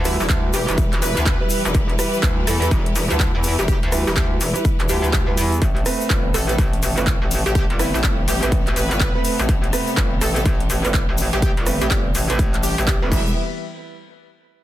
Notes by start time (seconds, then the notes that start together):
Already playing: D2 E3 E4 G4 B4
0.05 G3 E4 B4, cross-stick, open hi-hat, shaker
0.20 E1 E4, shaker
0.29 D2 G3 E4 E5, kick, clap, closed hi-hat, shaker
0.53 E1 G4, open hi-hat, shaker
0.68 E1 G3 E4 B4, closed hi-hat, shaker
0.78 kick, closed hi-hat, shaker
0.93 clap, closed hi-hat
1.02 E1 B4, open hi-hat, shaker
1.17 D2, closed hi-hat, shaker
1.26 kick, clap, closed hi-hat, shaker
1.41 G3 E4 B4
1.50 open hi-hat, shaker
1.65 E1, closed hi-hat, shaker
1.74 E1, kick, closed hi-hat, shaker
1.89 closed hi-hat
1.99 G3 E4 B4, cross-stick, open hi-hat, shaker
2.14 shaker
2.23 D2 G3 E4, kick, clap, closed hi-hat, shaker
2.47 E2 A4, cross-stick, open hi-hat, shaker
2.62 G3 E4 A4 B4, closed hi-hat, shaker
2.71 E1, kick, closed hi-hat, shaker
2.86 closed hi-hat
2.96 E1, open hi-hat, shaker
3.10 D2 G3 E4 B4, closed hi-hat, shaker
3.20 kick, clap, closed hi-hat, shaker
3.35 E2
3.44 open hi-hat, shaker
3.59 E1 G4, closed hi-hat, shaker
3.68 G4, kick, closed hi-hat, shaker
3.83 D2, closed hi-hat
3.92 G3 E4 B4, cross-stick, open hi-hat, shaker
4.07 E1 G4, shaker
4.16 D2 G3 E4 G4 E5, kick, clap, closed hi-hat, shaker
4.41 E1, open hi-hat, shaker
4.55 G3 E4 B4, closed hi-hat, shaker
4.65 kick, closed hi-hat, shaker
4.80 E1, clap, closed hi-hat
4.89 D2 G3 E4 G4 B4, open hi-hat, shaker
5.04 G3 E4 B4, closed hi-hat, shaker
5.13 kick, clap, closed hi-hat, shaker
5.28 G3 E4 B4
5.37 E2, open hi-hat, shaker
5.52 closed hi-hat, shaker
5.62 A1 C3 A3 B3, kick, closed hi-hat, shaker
5.77 closed hi-hat
5.86 A3 C4 B4, cross-stick, open hi-hat, shaker
6.01 shaker
6.10 G1 C4 B4, kick, clap, closed hi-hat, shaker
6.34 A1 A4, cross-stick, open hi-hat, shaker
6.49 A3 C4 A4 B4, closed hi-hat, shaker
6.58 A1, kick, closed hi-hat, shaker
6.73 closed hi-hat
6.83 A1, open hi-hat, shaker
6.97 G1 A3 C4 B4, closed hi-hat, shaker
7.07 kick, clap, closed hi-hat, shaker
7.22 A1
7.31 open hi-hat, shaker
7.46 A1 G4, closed hi-hat, shaker
7.55 G4, kick, closed hi-hat, shaker
7.70 G1, closed hi-hat
7.79 A3 C4 E4 B4, cross-stick, open hi-hat, shaker
7.94 A1 E4, shaker
8.04 G1 D5, kick, clap, closed hi-hat, shaker
8.28 A1 G4, open hi-hat, shaker
8.43 A1 A3 C4 B4, closed hi-hat, shaker
8.52 kick, closed hi-hat, shaker
8.67 clap, closed hi-hat
8.76 A1 B4, open hi-hat, shaker
8.91 G1, closed hi-hat, shaker
9.00 kick, clap, closed hi-hat, shaker
9.15 A3 C4 B4
9.25 open hi-hat, shaker
9.39 A1, closed hi-hat, shaker
9.49 A1 G3, kick, closed hi-hat, shaker
9.64 closed hi-hat
9.73 A3 C4 B4, cross-stick, open hi-hat, shaker
9.87 shaker
9.97 G1 C4 B4, kick, clap, closed hi-hat, shaker
10.21 A1 A4, cross-stick, open hi-hat, shaker
10.36 A3 C4 A4 B4, closed hi-hat, shaker
10.45 A1, kick, closed hi-hat, shaker
10.60 closed hi-hat
10.70 A1, open hi-hat, shaker
10.85 G1 A3 C4 B4, closed hi-hat, shaker
10.94 kick, clap, closed hi-hat, shaker
11.09 A1
11.18 open hi-hat, shaker
11.33 A1 G4, closed hi-hat, shaker
11.42 G4, kick, closed hi-hat, shaker
11.57 G1, closed hi-hat
11.66 A3 C4 B4, cross-stick, open hi-hat, shaker
11.81 A1 G4, closed hi-hat, shaker
11.90 G1 G4 D5, kick, clap, closed hi-hat, shaker
12.15 A1, open hi-hat, shaker
12.30 A1 A3 C4 B4, closed hi-hat, shaker
12.39 kick, closed hi-hat, shaker
12.54 clap, closed hi-hat
12.63 G4, open hi-hat, shaker
12.78 A1, closed hi-hat, shaker
12.87 kick, clap, closed hi-hat, shaker
13.02 G1 A3 C4 B4
13.11 E1 E3 G3 B3 E4 G4 B4 E5, kick, crash, shaker
13.27 shaker